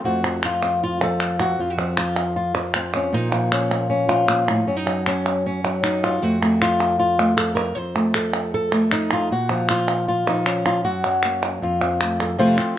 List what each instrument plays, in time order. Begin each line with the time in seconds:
0.04 nylon-string guitar F2 F3 A3 C4 F#4
0.24 nylon-string guitar F3
0.43 nylon-string guitar F4, clap
0.63 nylon-string guitar C4, clap
0.84 nylon-string guitar F4
1.01 nylon-string guitar F3 A4
1.20 clap
1.40 nylon-string guitar F#4, clap
1.59 nylon-string guitar F2 F4
1.70 nylon-string guitar F#4
1.78 nylon-string guitar F3
1.97 nylon-string guitar F4, clap
2.36 nylon-string guitar F4
2.55 nylon-string guitar F3
2.74 nylon-string guitar C4, clap
2.95 nylon-string guitar C#4
3.13 nylon-string guitar A#2 F3 A#3 D#4
3.32 nylon-string guitar F3
3.52 nylon-string guitar C#4, clap
3.72 nylon-string guitar A#3
3.90 nylon-string guitar C#4
4.09 nylon-string guitar F3 F4
4.28 nylon-string guitar A#2, clap
4.47 nylon-string guitar A2 D#4, clap
4.67 nylon-string guitar F#2 C#4
4.77 nylon-string guitar D#4
4.86 nylon-string guitar F#3
5.06 nylon-string guitar C#4, clap
5.26 clap
5.46 nylon-string guitar C#4
5.64 nylon-string guitar F#3
5.83 nylon-string guitar D#4, clap
6.03 nylon-string guitar F4
6.22 nylon-string guitar F2 A3 C4 F#4
6.42 nylon-string guitar A3
6.62 nylon-string guitar F4, clap
6.99 nylon-string guitar F4
7.19 nylon-string guitar A3
7.37 nylon-string guitar A4, clap
7.55 nylon-string guitar A#4
7.75 nylon-string guitar F2 C5
7.95 nylon-string guitar A3
8.14 nylon-string guitar A4, clap
8.54 nylon-string guitar A4
8.72 nylon-string guitar A3
8.91 nylon-string guitar D#4, clap
9.13 nylon-string guitar F4
9.31 nylon-string guitar A#2 F#4
9.50 nylon-string guitar F3
9.69 nylon-string guitar F4, clap
9.88 clap
10.08 nylon-string guitar F4
10.28 nylon-string guitar F3 D#4
10.46 nylon-string guitar C#4, clap
10.66 nylon-string guitar F4
10.85 nylon-string guitar F#2 F#4
11.04 nylon-string guitar F#3
11.23 nylon-string guitar A#3, clap
11.62 nylon-string guitar F2 F4
11.81 nylon-string guitar F3
12.01 nylon-string guitar A3, clap
12.21 nylon-string guitar A4
12.39 nylon-string guitar F2 C3 F3 A3 C4 F4
12.58 nylon-string guitar F3 A3 C4 F4, clap